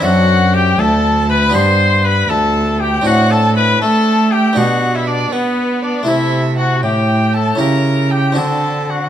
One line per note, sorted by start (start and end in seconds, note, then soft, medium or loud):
0.00 0.75 F#2 medium
0.00 0.78 F#2 medium
0.00 1.48 C4 medium
0.00 1.49 D4 soft
0.00 0.55 F#4 loud
0.00 1.49 A4 soft
0.00 0.55 F#5 medium
0.54 0.81 G4 medium
0.54 0.80 G5 medium
0.79 1.50 D2 medium
0.79 1.56 D2 medium
0.79 1.29 A4 medium
0.79 1.31 A5 medium
1.29 1.54 B4 medium
1.29 1.56 B5 medium
1.49 2.99 B3 soft
1.49 3.00 D4 soft
1.49 3.01 G4 soft
1.54 2.25 G2 medium
1.54 2.29 G2 medium
1.54 2.05 C5 medium
1.54 2.06 C6 medium
2.04 2.30 B4 medium
2.04 2.32 B5 medium
2.29 3.04 D2 medium
2.29 3.02 D2 medium
2.29 2.82 A4 medium
2.29 2.80 A5 medium
2.80 3.05 G4 medium
2.80 3.08 G5 medium
3.01 4.51 C4 soft
3.01 4.51 D4 medium
3.01 4.52 F#4 soft
3.01 3.32 F#4 medium
3.06 3.80 A2 medium
3.06 3.78 A2 medium
3.06 3.33 F#5 medium
3.31 3.56 A4 medium
3.31 3.55 A5 medium
3.56 3.81 B4 loud
3.56 3.81 B5 medium
3.81 4.58 A3 medium
3.81 4.53 A3 medium
3.81 4.33 A4 medium
3.81 4.31 A5 medium
4.32 4.58 G4 medium
4.32 4.58 G5 medium
4.53 5.32 B2 medium
4.53 5.32 B3 soft
4.53 6.02 D4 soft
4.53 4.97 F#4 medium
4.53 6.03 G4 soft
4.53 4.96 F#5 medium
4.57 5.28 B2 medium
4.94 5.06 E4 medium
4.94 5.08 E5 medium
5.07 5.34 D4 medium
5.07 5.33 D5 medium
5.32 5.82 B3 medium
5.32 6.06 B3 medium
5.32 6.04 B3 medium
5.32 5.84 B4 medium
5.82 6.09 D4 medium
5.82 6.07 D5 medium
6.03 7.53 A3 soft
6.03 7.54 E4 soft
6.03 7.55 A4 soft
6.07 6.84 C3 medium
6.07 6.79 C3 soft
6.07 6.43 E4 medium
6.07 6.57 E5 medium
6.58 6.83 F#4 medium
6.58 6.82 F#5 medium
6.83 7.59 A2 medium
6.83 7.56 A2 soft
6.83 7.33 G4 medium
6.83 7.35 G5 medium
7.34 7.59 A4 medium
7.34 7.59 A5 medium
7.55 8.38 C#3 medium
7.55 8.32 C#4 soft
7.55 8.33 E4 soft
7.55 8.34 G4 soft
7.55 8.12 A#5 medium
7.60 8.33 C#3 soft
7.60 8.13 A#4 medium
8.10 8.39 G4 medium
8.10 8.38 G5 medium
8.32 9.09 C4 soft
8.32 9.09 D4 soft
8.32 9.09 F#4 soft
8.32 8.91 A5 medium
8.37 9.09 D3 medium
8.37 9.09 D3 soft
8.37 8.92 A4 medium
8.89 9.09 F#4 medium
8.89 9.09 F#5 soft